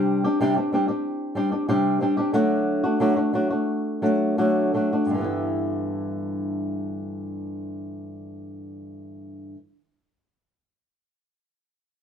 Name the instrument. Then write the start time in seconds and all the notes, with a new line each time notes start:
nylon-string guitar
Already playing: C3 G3 C4 D4 G4
0.24 C4 D4 G4
0.41 C3 G3 C4 D4 G4
0.56 C4 D4 G4
0.73 G3 C4 D4 G4
0.88 C4 D4 G4
1.35 G3 C4 D4 G4
1.52 C4 D4 G4
1.68 C3 G3 C4 D4 G4
2.01 G3 C4 D4 G4
2.17 C4 D4 G4
2.33 D3 F#3 A3 D4 F#4
2.84 A3 D4 F#4
3.00 D3 F#3 A3 D4 F#4
3.16 A3 D4 F#4
3.33 F#3 A3 D4 F#4
3.50 A3 D4 F#4
4.02 F#3 A3 D4 F#4
4.38 D3 F#3 A3 D4 F#4
4.74 F#3 A3 D4 F#4
4.93 A3 D4 F#4
5.06 G2
5.11 D3 E3
5.18 G3 B3
5.24 E4